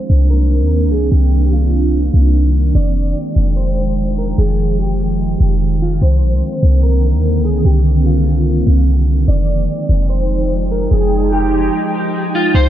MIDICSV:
0, 0, Header, 1, 4, 480
1, 0, Start_track
1, 0, Tempo, 408163
1, 1314, Time_signature, 4, 2, 24, 8
1, 14923, End_track
2, 0, Start_track
2, 0, Title_t, "Clean electric guitar"
2, 0, Program_c, 0, 27
2, 0, Note_on_c, 0, 72, 89
2, 310, Note_off_c, 0, 72, 0
2, 352, Note_on_c, 0, 70, 80
2, 1029, Note_off_c, 0, 70, 0
2, 1074, Note_on_c, 0, 68, 72
2, 1302, Note_off_c, 0, 68, 0
2, 1317, Note_on_c, 0, 67, 96
2, 1766, Note_off_c, 0, 67, 0
2, 1797, Note_on_c, 0, 65, 81
2, 2708, Note_off_c, 0, 65, 0
2, 3235, Note_on_c, 0, 74, 90
2, 4147, Note_off_c, 0, 74, 0
2, 4191, Note_on_c, 0, 72, 74
2, 4869, Note_off_c, 0, 72, 0
2, 4917, Note_on_c, 0, 70, 81
2, 5143, Note_off_c, 0, 70, 0
2, 5154, Note_on_c, 0, 68, 95
2, 5605, Note_off_c, 0, 68, 0
2, 5633, Note_on_c, 0, 67, 74
2, 6786, Note_off_c, 0, 67, 0
2, 6844, Note_on_c, 0, 65, 78
2, 7067, Note_off_c, 0, 65, 0
2, 7079, Note_on_c, 0, 72, 91
2, 7989, Note_off_c, 0, 72, 0
2, 8030, Note_on_c, 0, 70, 78
2, 8709, Note_off_c, 0, 70, 0
2, 8756, Note_on_c, 0, 68, 73
2, 8983, Note_off_c, 0, 68, 0
2, 8998, Note_on_c, 0, 67, 96
2, 9447, Note_off_c, 0, 67, 0
2, 9476, Note_on_c, 0, 65, 78
2, 10388, Note_off_c, 0, 65, 0
2, 10914, Note_on_c, 0, 74, 94
2, 11827, Note_off_c, 0, 74, 0
2, 11870, Note_on_c, 0, 72, 74
2, 12549, Note_off_c, 0, 72, 0
2, 12597, Note_on_c, 0, 70, 86
2, 12823, Note_off_c, 0, 70, 0
2, 12834, Note_on_c, 0, 68, 92
2, 13285, Note_off_c, 0, 68, 0
2, 13316, Note_on_c, 0, 67, 75
2, 14468, Note_off_c, 0, 67, 0
2, 14524, Note_on_c, 0, 65, 78
2, 14747, Note_off_c, 0, 65, 0
2, 14759, Note_on_c, 0, 72, 92
2, 14923, Note_off_c, 0, 72, 0
2, 14923, End_track
3, 0, Start_track
3, 0, Title_t, "Ambient pad"
3, 0, Program_c, 1, 92
3, 0, Note_on_c, 1, 51, 86
3, 0, Note_on_c, 1, 58, 73
3, 0, Note_on_c, 1, 60, 72
3, 0, Note_on_c, 1, 62, 81
3, 3196, Note_off_c, 1, 58, 0
3, 3196, Note_off_c, 1, 60, 0
3, 3196, Note_off_c, 1, 62, 0
3, 3235, Note_on_c, 1, 79, 90
3, 3236, Note_on_c, 1, 53, 82
3, 3236, Note_on_c, 1, 56, 72
3, 7036, Note_off_c, 1, 53, 0
3, 7036, Note_off_c, 1, 79, 0
3, 7037, Note_off_c, 1, 56, 0
3, 7073, Note_on_c, 1, 50, 82
3, 7074, Note_on_c, 1, 58, 74
3, 7074, Note_on_c, 1, 60, 70
3, 10867, Note_off_c, 1, 51, 0
3, 10875, Note_off_c, 1, 50, 0
3, 10875, Note_off_c, 1, 58, 0
3, 10876, Note_off_c, 1, 60, 0
3, 10912, Note_on_c, 1, 53, 79
3, 10913, Note_on_c, 1, 56, 73
3, 10913, Note_on_c, 1, 63, 76
3, 10913, Note_on_c, 1, 79, 91
3, 14715, Note_off_c, 1, 53, 0
3, 14715, Note_off_c, 1, 56, 0
3, 14715, Note_off_c, 1, 63, 0
3, 14715, Note_off_c, 1, 79, 0
3, 14754, Note_on_c, 1, 58, 78
3, 14754, Note_on_c, 1, 63, 90
3, 14755, Note_on_c, 1, 60, 72
3, 14755, Note_on_c, 1, 62, 84
3, 14923, Note_off_c, 1, 58, 0
3, 14923, Note_off_c, 1, 60, 0
3, 14923, Note_off_c, 1, 62, 0
3, 14923, Note_off_c, 1, 63, 0
3, 14923, End_track
4, 0, Start_track
4, 0, Title_t, "808-style bass"
4, 0, Program_c, 2, 38
4, 114, Note_on_c, 2, 36, 105
4, 714, Note_on_c, 2, 39, 100
4, 731, Note_off_c, 2, 36, 0
4, 1013, Note_on_c, 2, 36, 102
4, 1031, Note_off_c, 2, 39, 0
4, 1298, Note_off_c, 2, 36, 0
4, 1313, Note_on_c, 2, 36, 103
4, 2467, Note_off_c, 2, 36, 0
4, 2514, Note_on_c, 2, 36, 104
4, 3205, Note_off_c, 2, 36, 0
4, 3232, Note_on_c, 2, 29, 105
4, 3694, Note_off_c, 2, 29, 0
4, 3952, Note_on_c, 2, 29, 100
4, 5106, Note_off_c, 2, 29, 0
4, 5153, Note_on_c, 2, 29, 102
4, 6306, Note_off_c, 2, 29, 0
4, 6354, Note_on_c, 2, 29, 106
4, 7045, Note_off_c, 2, 29, 0
4, 7074, Note_on_c, 2, 36, 103
4, 7315, Note_on_c, 2, 34, 96
4, 7332, Note_off_c, 2, 36, 0
4, 7435, Note_on_c, 2, 36, 92
4, 7452, Note_off_c, 2, 34, 0
4, 7548, Note_off_c, 2, 36, 0
4, 7794, Note_on_c, 2, 36, 109
4, 8394, Note_on_c, 2, 39, 95
4, 8412, Note_off_c, 2, 36, 0
4, 8694, Note_on_c, 2, 36, 98
4, 8712, Note_off_c, 2, 39, 0
4, 8979, Note_off_c, 2, 36, 0
4, 8993, Note_on_c, 2, 36, 103
4, 10146, Note_off_c, 2, 36, 0
4, 10192, Note_on_c, 2, 36, 101
4, 10884, Note_off_c, 2, 36, 0
4, 10912, Note_on_c, 2, 29, 107
4, 11374, Note_off_c, 2, 29, 0
4, 11633, Note_on_c, 2, 29, 105
4, 12786, Note_off_c, 2, 29, 0
4, 12833, Note_on_c, 2, 29, 101
4, 13755, Note_off_c, 2, 29, 0
4, 14754, Note_on_c, 2, 36, 104
4, 14923, Note_off_c, 2, 36, 0
4, 14923, End_track
0, 0, End_of_file